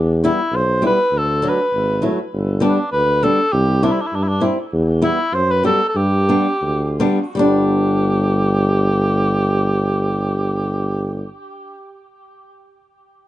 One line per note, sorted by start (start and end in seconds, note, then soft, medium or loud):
0.00 0.28 E2 medium
0.24 0.38 G3 medium
0.24 0.38 B3 medium
0.24 0.57 E4 medium
0.24 0.39 E4 medium
0.52 0.88 B1 medium
0.52 0.84 C5 medium
0.82 0.97 G3 medium
0.82 0.98 B3 medium
0.82 0.98 E4 medium
0.86 1.20 B4 medium
1.12 1.48 D2 medium
1.18 1.50 A4 medium
1.42 1.58 F#3 medium
1.42 1.58 A3 soft
1.42 1.58 D4 medium
1.49 2.06 B4 medium
1.73 2.09 G#1 medium
2.02 2.18 F#3 medium
2.02 2.18 A3 soft
2.02 2.18 E4 medium
2.33 2.69 G1 medium
2.60 2.77 G3 medium
2.60 2.77 B3 medium
2.60 2.77 D4 medium
2.60 2.91 D4 medium
2.92 3.29 D2 medium
2.92 3.25 B4 medium
3.23 3.38 G3 medium
3.23 3.38 B3 medium
3.23 3.38 D4 medium
3.23 3.54 A4 medium
3.52 3.89 C2 loud
3.52 3.85 G4 medium
3.83 3.98 G3 medium
3.83 3.98 C4 medium
3.83 3.93 D4 medium
3.83 3.98 E4 medium
3.92 4.03 E4 medium
4.01 4.08 D4 medium
4.07 4.17 E4 medium
4.13 4.49 G2 medium
4.13 4.25 D4 medium
4.23 4.30 E4 medium
4.28 4.43 D4 medium
4.40 4.56 G3 soft
4.40 4.57 C4 medium
4.40 4.57 E4 medium
4.73 5.09 E2 medium
5.02 5.17 G3 medium
5.02 5.17 B3 medium
5.02 5.17 E4 medium
5.02 5.35 E4 medium
5.33 5.70 F#2 medium
5.33 5.52 C5 medium
5.51 5.65 B4 medium
5.64 5.79 G3 medium
5.64 5.79 B3 medium
5.64 5.80 G4 medium
5.64 5.88 A4 medium
5.89 5.98 A4 medium
5.95 6.36 G2 medium
5.95 6.99 G4 medium
6.29 6.46 G3 medium
6.29 6.45 B3 medium
6.29 6.46 D4 medium
6.61 7.06 D2 medium
7.00 7.18 G3 medium
7.00 7.18 B3 medium
7.00 7.18 D4 medium
7.35 11.25 G1 medium
7.35 11.70 G3 medium
7.35 11.72 B3 medium
7.35 11.25 G4 medium
7.39 11.74 D4 medium